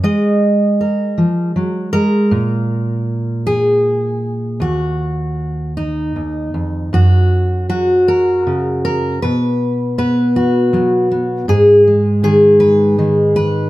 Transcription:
0.03 1.93 G#3 medium
0.03 1.65 D#5 medium
0.81 1.92 A#4 soft
1.18 1.55 F3 medium
1.56 1.93 F#3 medium
1.93 2.31 G#3 medium
1.93 4.21 A#4 loud
2.31 4.60 A#2 medium
3.47 4.61 G#4 medium
4.60 6.15 D#2 medium
4.60 5.77 F#4 medium
5.77 6.93 D#4 medium
6.16 6.54 D#2 soft
6.54 6.92 F2 medium
6.93 9.18 F#2 medium
6.93 7.68 F#4 medium
7.69 9.18 F#3 medium
7.69 8.84 F#4 medium
8.08 8.84 A#4 medium
8.47 9.18 C#3 soft
8.85 9.22 A#4 medium
9.22 11.45 B2 medium
9.22 9.97 B4 medium
9.98 10.73 B3 medium
9.98 11.11 B4 medium
10.36 11.49 F#4 medium
10.73 11.44 F#3 medium
10.73 11.10 B3 soft
11.12 11.44 B3 soft
11.48 13.70 G#2 medium
11.48 12.22 G#4 medium
11.87 12.97 G#3 soft
12.23 12.97 D#3 medium
12.23 13.37 G#4 medium
12.60 13.35 B4 medium
12.98 13.70 D#3 medium
12.98 13.70 G#3 soft
13.36 13.70 B4 loud

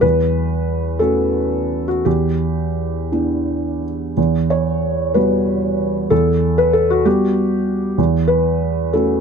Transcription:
0.01 0.97 E2 medium
0.01 1.00 B4 medium
0.99 2.01 A3 soft
0.99 2.01 C#4 soft
0.99 1.86 F#4 soft
0.99 1.87 A4 medium
1.88 2.05 F#4 medium
2.05 3.08 E2 soft
2.05 3.82 G4 medium
3.12 4.13 B3 soft
3.12 4.13 D4 soft
3.12 4.14 E4 soft
4.17 5.12 E2 soft
4.50 5.15 C#5 medium
5.14 6.07 G3 soft
5.14 6.07 B3 soft
5.14 6.07 F#4 soft
5.14 6.11 B4 medium
6.10 7.03 E2 medium
6.10 6.58 A4 medium
6.58 6.74 B4 medium
6.73 6.89 A4 medium
6.90 7.05 F#4 medium
7.05 7.94 G3 soft
7.05 7.94 B3 soft
7.05 7.94 F#4 soft
7.05 7.98 G4 medium
7.98 8.90 E2 medium
8.28 8.92 B4 medium
8.93 9.21 A3 soft
8.93 9.21 C#4 soft
8.93 9.21 F#4 soft
8.93 9.21 A4 medium

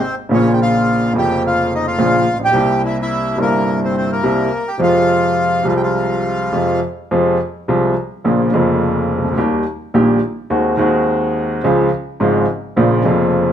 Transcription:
0.00 0.15 C4 medium
0.00 0.15 C5 medium
0.29 1.11 A#1 medium
0.29 1.11 A#2 medium
0.29 1.10 C#3 medium
0.29 1.11 F3 medium
0.29 1.11 A#3 medium
0.29 0.52 C#4 medium
0.33 1.12 F4 medium
0.33 0.53 C#5 medium
0.53 0.60 G5 medium
0.61 1.12 F4 medium
0.61 1.13 F5 medium
1.13 1.95 F1 medium
1.13 1.95 F2 medium
1.13 1.94 C#3 medium
1.13 1.94 F3 medium
1.13 1.95 A#3 medium
1.13 1.96 F4 medium
1.18 1.43 G4 medium
1.18 1.43 G5 medium
1.47 1.71 F4 medium
1.47 1.74 F5 medium
1.75 1.86 D#4 medium
1.75 1.86 D#5 medium
1.87 2.38 F4 medium
1.87 2.38 F5 medium
1.98 2.22 A#1 medium
1.98 2.22 A#2 medium
1.98 2.22 C#3 medium
1.98 2.22 F3 medium
1.98 2.22 A#3 medium
1.98 2.22 F4 medium
2.33 2.40 A1 soft
2.39 2.47 A#1 medium
2.44 2.54 B1 medium
2.44 2.81 G4 medium
2.44 2.82 G5 medium
2.52 3.34 C2 medium
2.52 3.34 C3 medium
2.52 3.34 G3 medium
2.52 3.35 A#3 medium
2.56 3.35 E4 medium
2.85 2.97 E4 medium
2.85 2.98 E5 medium
3.01 3.38 E4 medium
3.01 3.39 E5 medium
3.36 4.19 G1 medium
3.36 4.19 G2 medium
3.36 4.18 C3 medium
3.36 4.19 G3 medium
3.36 4.20 A#3 medium
3.40 3.80 A#3 medium
3.40 4.21 E4 medium
3.40 3.80 A#4 medium
3.84 3.95 C4 medium
3.84 3.96 C5 medium
3.97 4.09 C4 medium
3.97 4.11 C5 medium
4.12 4.63 A#3 medium
4.12 4.70 A#4 medium
4.23 4.48 C2 medium
4.23 4.48 C3 medium
4.23 4.48 G3 medium
4.23 4.48 A#3 medium
4.23 4.48 E4 medium
4.68 4.80 G4 medium
4.68 4.81 G5 medium
4.78 5.61 F2 medium
4.78 5.60 C3 medium
4.78 5.62 F3 medium
4.78 5.62 G#3 medium
4.82 5.62 F4 medium
4.82 5.63 F4 medium
4.82 5.67 F5 medium
5.63 6.49 C2 medium
5.63 6.49 C3 medium
5.63 6.48 F3 medium
5.63 6.49 G#3 medium
5.67 6.50 F4 medium
5.67 5.74 F4 soft
5.67 5.74 F5 medium
5.77 5.82 G5 medium
5.83 6.81 F4 medium
5.83 6.81 F5 medium
6.53 6.78 F2 medium
6.53 6.78 C3 medium
6.53 6.78 F3 medium
6.53 6.78 G#3 medium
6.53 6.78 F4 medium
7.11 7.36 F2 medium
7.11 7.36 C3 medium
7.11 7.36 F3 medium
7.11 7.36 G#3 medium
7.11 7.36 F4 medium
7.68 7.93 C2 medium
7.68 7.93 C3 medium
7.68 7.93 F3 medium
7.68 7.93 G#3 medium
7.68 7.93 F4 medium
8.24 8.49 A#1 medium
8.24 8.49 A#2 medium
8.24 8.49 C#3 medium
8.24 8.49 F3 medium
8.24 8.49 A#3 medium
8.24 8.50 F4 medium
8.52 9.35 F1 medium
8.52 9.35 F2 medium
8.52 9.34 C#3 medium
8.52 9.34 F3 medium
8.52 9.35 A#3 medium
8.52 9.36 F4 medium
9.18 9.25 C2 medium
9.24 9.32 C#2 medium
9.31 9.39 D2 medium
9.37 9.63 D#2 medium
9.37 9.62 D#3 medium
9.37 9.62 G3 medium
9.37 9.62 A#3 medium
9.37 9.62 G4 medium
9.94 10.18 A#1 medium
9.94 10.18 A#2 medium
9.94 10.18 D#3 medium
9.94 10.18 G3 medium
9.94 10.18 A#3 medium
9.94 10.19 G4 medium
10.50 10.74 D#2 medium
10.50 10.74 D#3 medium
10.50 10.75 G#3 medium
10.50 10.75 C4 medium
10.50 10.75 F#4 medium
10.77 11.60 D#2 medium
10.77 11.60 D#3 medium
10.77 11.60 G#3 medium
10.77 11.60 C4 medium
10.81 11.61 F#4 medium
11.64 11.88 C#2 medium
11.64 11.88 C#3 medium
11.64 11.88 F3 medium
11.64 11.88 G#3 medium
11.64 11.88 F4 medium
12.20 12.44 G#1 medium
12.20 12.45 G#2 medium
12.20 12.44 C#3 medium
12.20 12.44 F3 medium
12.20 12.44 G#3 medium
12.20 12.45 F4 medium
12.76 13.02 A#1 medium
12.76 13.02 A#2 medium
12.76 13.02 C#3 medium
12.76 13.01 F3 medium
12.76 13.02 A#3 medium
12.76 13.02 F4 medium
13.03 13.53 F1 medium
13.03 13.53 F2 medium
13.03 13.53 C#3 medium
13.03 13.53 F3 medium
13.03 13.53 A#3 medium
13.08 13.53 F4 medium

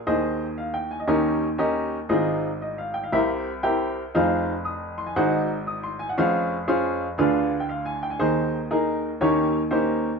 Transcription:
0.07 1.04 D#2 medium
0.07 1.04 D#3 medium
0.07 0.45 G#4 medium
0.07 0.45 C5 medium
0.07 0.45 D#5 loud
0.58 0.73 F5 medium
0.74 0.89 G5 medium
0.91 0.99 G#5 medium
1.00 1.06 D#5 medium
1.07 2.05 D#2 medium
1.07 2.06 D#3 medium
1.07 1.46 C#4 medium
1.07 1.46 D#4 medium
1.07 1.46 G4 medium
1.07 1.46 A#4 medium
1.07 1.46 D#5 loud
1.58 1.97 C#4 medium
1.58 1.97 D#4 medium
1.58 1.97 G4 medium
1.58 1.97 A#4 medium
1.58 1.97 D#5 loud
2.09 3.07 G#1 medium
2.09 3.08 G#2 medium
2.09 2.48 C4 medium
2.09 2.48 D#4 medium
2.09 2.48 F4 medium
2.09 2.48 G#4 medium
2.09 2.48 D#5 medium
2.62 2.77 D#5 medium
2.78 2.93 F5 medium
2.94 3.02 G5 medium
3.04 3.27 F5 medium
3.12 4.10 C2 medium
3.12 4.10 C3 medium
3.12 3.50 C4 medium
3.12 3.50 E4 medium
3.12 3.50 G4 medium
3.12 3.50 A#4 medium
3.12 3.51 E5 medium
3.63 4.01 C4 medium
3.63 4.01 E4 medium
3.63 4.01 G4 medium
3.63 4.01 A#4 medium
3.63 4.01 G5 medium
4.15 5.12 F1 medium
4.15 5.12 F2 medium
4.15 4.52 D#4 medium
4.15 4.52 F4 medium
4.15 4.52 G#4 medium
4.15 4.52 C5 medium
4.15 4.52 F5 medium
4.65 4.96 D#6 medium
4.98 5.06 C6 medium
5.06 5.30 G#5 medium
5.16 6.13 G#1 medium
5.16 6.13 G#2 medium
5.16 5.54 D#4 loud
5.16 5.54 F#4 medium
5.16 5.54 G#4 medium
5.16 5.54 C5 medium
5.16 5.48 F#5 loud
5.67 5.82 D#6 medium
5.83 5.98 C6 medium
5.99 6.07 G#5 medium
6.09 6.33 F#5 medium
6.17 7.15 F1 medium
6.17 7.15 F2 medium
6.17 6.55 C#4 medium
6.17 6.55 F4 medium
6.17 6.56 G#4 medium
6.17 6.56 C5 medium
6.17 6.55 F5 loud
6.68 7.06 C#4 medium
6.68 7.06 F4 medium
6.68 7.06 G#4 medium
6.68 7.06 C5 medium
6.68 7.06 F5 loud
7.18 8.16 D2 medium
7.18 8.16 D3 medium
7.18 7.56 D4 medium
7.18 7.56 F4 medium
7.18 7.56 G#4 medium
7.18 7.56 B4 medium
7.18 7.51 F5 loud
7.60 7.68 G5 medium
7.69 7.84 F5 medium
7.85 8.01 G#5 medium
8.03 8.11 G5 medium
8.10 8.34 G#5 medium
8.19 9.17 D#2 medium
8.19 9.17 D#3 medium
8.19 8.58 D#4 medium
8.19 8.58 G#4 medium
8.19 8.58 C5 medium
8.71 9.09 D#4 medium
8.71 9.09 G#4 medium
8.71 9.09 A#4 medium
9.21 10.18 D#2 medium
9.21 10.18 D#3 medium
9.21 9.59 A#3 medium
9.21 9.59 C#4 medium
9.21 9.59 D#4 medium
9.21 9.59 G4 medium
9.21 9.59 C#5 loud
9.71 10.09 A#3 medium
9.71 10.09 C#4 medium
9.71 10.09 D#4 medium
9.71 10.09 G4 medium
9.71 10.09 C5 medium

